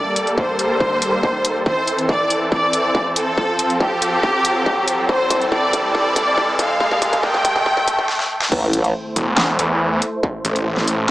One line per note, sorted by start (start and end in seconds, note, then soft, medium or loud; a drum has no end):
0.00 1.65 G3 medium
0.00 1.65 A#3 medium
0.00 1.63 A4 medium
0.00 0.29 D5 medium
0.00 riser medium
0.16 closed hi-hat medium
0.27 closed hi-hat soft
0.38 1.58 C5 loud
0.38 kick loud
0.59 closed hi-hat medium
0.80 kick medium
1.02 closed hi-hat medium
1.23 kick medium
1.45 closed hi-hat medium
1.66 3.36 E3 medium
1.66 6.77 C4 medium
1.66 3.36 A4 medium
1.66 2.01 C5 loud
1.66 kick loud
1.87 closed hi-hat medium
1.99 closed hi-hat soft
2.09 2.44 D5 medium
2.09 kick loud
2.30 closed hi-hat medium
2.52 3.08 D5 medium
2.52 kick loud
2.73 closed hi-hat medium
2.95 kick loud
3.16 3.72 A4 medium
3.16 closed hi-hat medium
3.38 5.07 F3 medium
3.38 5.07 A4 medium
3.38 kick loud
3.59 closed hi-hat medium
3.70 closed hi-hat soft
3.80 5.01 G4 loud
3.80 kick loud
4.02 closed hi-hat medium
4.23 kick loud
4.45 closed hi-hat medium
4.66 kick loud
4.88 closed hi-hat medium
5.09 6.79 E3 medium
5.09 8.06 A4 medium
5.09 5.44 C5 loud
5.09 kick loud
5.30 kick loud
5.30 closed hi-hat medium
5.42 closed hi-hat soft
5.52 5.87 D5 loud
5.52 kick loud
5.73 kick loud
5.73 closed hi-hat medium
5.95 6.51 D5 loud
5.95 kick loud
6.16 kick loud
6.16 closed hi-hat medium
6.38 kick loud
6.59 7.15 F5 loud
6.59 kick loud
6.59 closed hi-hat medium
6.80 8.08 G3 medium
6.80 8.08 A#3 medium
6.80 kick loud
6.91 kick medium
7.02 kick loud
7.02 closed hi-hat medium
7.13 kick medium
7.13 closed hi-hat soft
7.23 8.44 G5 loud
7.23 kick loud
7.34 kick medium
7.45 kick loud
7.45 closed hi-hat medium
7.56 kick medium
7.66 kick loud
7.77 kick loud
7.88 kick loud
7.88 closed hi-hat medium
7.99 kick medium
8.09 snare medium
8.20 snare medium
8.41 snare medium
8.52 8.93 A1 medium
8.52 11.11 A3 medium
8.52 11.11 E4 medium
8.52 11.11 C5 loud
8.52 kick loud
8.52 crash loud
8.52 sub drop medium
8.73 closed hi-hat medium
8.84 closed hi-hat soft
9.16 9.57 E1 loud
9.16 closed hi-hat medium
9.38 snare loud
9.38 clap medium
9.59 10.00 E2 loud
9.59 closed hi-hat medium
10.02 closed hi-hat medium
10.23 kick loud
10.45 10.65 A1 loud
10.45 closed hi-hat medium
10.56 closed hi-hat soft
10.66 11.07 A1 loud
10.77 snare soft
10.88 closed hi-hat medium